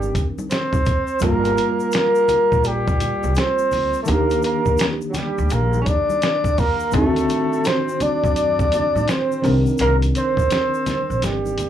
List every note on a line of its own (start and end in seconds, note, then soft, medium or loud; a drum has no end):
0.00 0.82 D#3 medium
0.00 0.26 G3 medium
0.00 0.82 C4 medium
0.00 0.83 D4 medium
0.00 0.27 G4 medium
0.00 0.83 A#4 medium
0.00 high conga soft
0.00 shaker soft
0.15 kick loud
0.15 closed hi-hat medium
0.15 low conga medium
0.15 shaker soft
0.38 high conga medium
0.38 shaker soft
0.50 1.18 C4 medium
0.50 1.19 C5 loud
0.50 snare medium
0.50 closed hi-hat medium
0.50 shaker medium
0.73 kick medium
0.73 high conga medium
0.73 shaker soft
0.86 kick medium
0.86 closed hi-hat medium
0.86 low conga medium
0.86 shaker soft
1.07 shaker soft
1.19 1.51 G1 loud
1.19 4.03 G3 medium
1.19 4.03 A#3 medium
1.19 1.90 A#3 medium
1.19 4.04 F4 medium
1.19 kick loud
1.19 closed hi-hat medium
1.19 shaker medium
1.23 1.90 A#4 loud
1.23 4.05 A#4 medium
1.45 closed hi-hat soft
1.45 shaker soft
1.57 closed hi-hat medium
1.57 shaker soft
1.80 shaker soft
1.91 2.67 A#3 medium
1.91 2.69 A#4 loud
1.91 snare loud
1.91 closed hi-hat medium
1.91 shaker medium
2.15 shaker soft
2.28 closed hi-hat medium
2.28 high conga medium
2.28 low conga medium
2.28 shaker medium
2.52 3.10 A#1 medium
2.52 kick medium
2.52 shaker soft
2.64 3.38 G3 medium
2.64 3.40 G4 loud
2.64 closed hi-hat medium
2.64 shaker medium
2.88 kick loud
2.88 high conga soft
2.88 shaker soft
3.00 closed hi-hat medium
3.00 low conga medium
3.00 shaker medium
3.23 3.34 C2 medium
3.23 high conga medium
3.23 shaker medium
3.35 4.02 C4 medium
3.35 4.02 C5 loud
3.35 snare medium
3.35 closed hi-hat medium
3.35 shaker medium
3.58 shaker medium
3.71 3.91 D2 medium
3.71 open hi-hat soft
3.71 low conga medium
3.71 shaker soft
3.93 shaker soft
4.02 6.88 D#3 medium
4.02 4.09 A3 medium
4.02 4.11 A4 medium
4.02 shaker medium
4.07 4.37 D#2 loud
4.07 6.89 A#3 medium
4.07 4.43 A#3 medium
4.07 6.90 D4 medium
4.07 6.90 G4 medium
4.07 4.44 A#4 loud
4.07 closed hi-hat medium
4.30 closed hi-hat soft
4.30 shaker soft
4.42 4.87 A#3 medium
4.42 4.88 A#4 medium
4.42 closed hi-hat medium
4.42 shaker soft
4.66 kick medium
4.66 shaker soft
4.77 snare loud
4.77 closed hi-hat loud
4.77 shaker medium
5.01 shaker soft
5.09 5.17 F#3 medium
5.09 5.18 F#4 medium
5.14 5.54 G3 medium
5.14 5.54 G4 medium
5.14 snare soft
5.14 closed hi-hat medium
5.14 high conga soft
5.14 low conga medium
5.14 shaker medium
5.38 5.49 D2 medium
5.38 shaker soft
5.50 5.80 A#1 loud
5.50 5.81 A#3 medium
5.50 5.82 A#4 medium
5.50 closed hi-hat medium
5.50 shaker medium
5.73 high conga soft
5.73 shaker soft
5.81 5.89 C#4 medium
5.81 5.90 C#5 medium
5.86 6.60 D4 medium
5.86 6.61 D5 loud
5.86 kick medium
5.86 closed hi-hat medium
5.86 low conga medium
5.86 shaker soft
6.10 high conga medium
6.10 shaker soft
6.22 snare loud
6.22 closed hi-hat medium
6.22 shaker medium
6.44 kick medium
6.44 shaker medium
6.58 6.94 A#3 medium
6.58 6.94 A#4 medium
6.58 kick medium
6.58 open hi-hat medium
6.58 low conga medium
6.58 shaker soft
6.80 shaker soft
6.91 7.22 D2 loud
6.91 9.39 D#3 medium
6.91 7.68 A3 medium
6.91 9.39 C4 medium
6.91 9.40 D4 medium
6.91 7.69 A4 loud
6.91 kick loud
6.91 closed hi-hat medium
6.91 shaker medium
6.95 7.03 D#4 medium
7.02 9.44 F#4 medium
7.16 closed hi-hat medium
7.16 shaker soft
7.29 closed hi-hat medium
7.29 shaker soft
7.53 shaker soft
7.64 8.03 C4 medium
7.64 8.04 C5 medium
7.64 snare loud
7.64 closed hi-hat loud
7.64 shaker medium
7.88 shaker soft
8.00 9.10 D4 medium
8.00 9.12 D5 medium
8.00 closed hi-hat medium
8.00 high conga medium
8.00 low conga medium
8.00 shaker medium
8.24 8.81 F#2 medium
8.24 kick medium
8.24 shaker soft
8.36 closed hi-hat medium
8.36 shaker medium
8.59 kick loud
8.59 high conga soft
8.59 shaker soft
8.72 closed hi-hat medium
8.72 low conga medium
8.72 shaker soft
8.95 9.06 A2 medium
8.95 high conga medium
8.95 shaker soft
9.08 9.55 C4 medium
9.08 9.56 C5 medium
9.08 snare loud
9.08 closed hi-hat medium
9.08 shaker medium
9.32 shaker soft
9.42 9.62 C2 loud
9.42 11.70 D#3 medium
9.42 11.70 C4 medium
9.42 11.70 D4 medium
9.42 11.70 A#4 medium
9.42 open hi-hat soft
9.42 low conga medium
9.42 shaker soft
9.66 shaker soft
9.78 10.09 C2 loud
9.78 9.97 A#3 medium
9.78 9.97 A#4 loud
9.78 closed hi-hat medium
9.78 shaker medium
10.02 closed hi-hat soft
10.02 shaker soft
10.15 11.25 C4 medium
10.15 11.27 C5 loud
10.15 closed hi-hat medium
10.15 shaker soft
10.37 kick medium
10.37 shaker soft
10.50 snare loud
10.50 closed hi-hat loud
10.50 shaker medium
10.74 shaker soft
10.86 snare soft
10.86 closed hi-hat medium
10.86 high conga medium
10.86 low conga medium
10.86 shaker medium
11.10 11.20 A#1 medium
11.10 shaker soft
11.22 11.51 G1 medium
11.22 11.70 G3 medium
11.22 11.70 G4 medium
11.22 snare medium
11.22 closed hi-hat medium
11.22 shaker medium
11.46 high conga soft
11.46 shaker soft
11.58 closed hi-hat medium
11.58 low conga medium
11.58 shaker soft